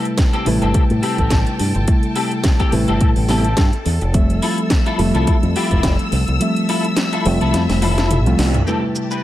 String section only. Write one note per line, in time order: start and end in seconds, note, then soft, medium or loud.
0.00 8.63 A4 medium
0.00 4.11 G5 medium
0.00 4.11 A5 medium
4.14 8.63 E6 medium
6.40 8.65 E5 medium
8.67 9.23 A3 medium
8.67 9.23 G4 medium
8.67 9.23 A5 medium